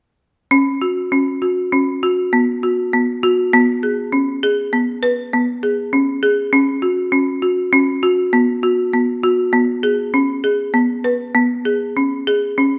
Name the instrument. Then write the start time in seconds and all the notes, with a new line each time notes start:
marimba
0.51 C#4
0.82 F#4
1.12 C#4
1.42 F#4
1.73 C#4
2.03 F#4
2.33 B3
2.63 F#4
2.93 B3
3.23 F#4
3.54 B3
3.83 G#4
4.12 C#4
4.43 G#4
4.73 B3
5.03 B4
5.33 B3
5.63 G#4
5.93 C#4
6.23 G#4
6.53 C#4
6.82 F#4
7.12 C#4
7.42 F#4
7.72 C#4
8.03 F#4
8.33 B3
8.63 F#4
8.93 B3
9.24 F#4
9.53 B3
9.83 G#4
10.14 C#4
10.44 G#4
10.74 B3
11.04 B4
11.35 B3
11.65 G#4
11.97 C#4
12.27 G#4
12.58 C#4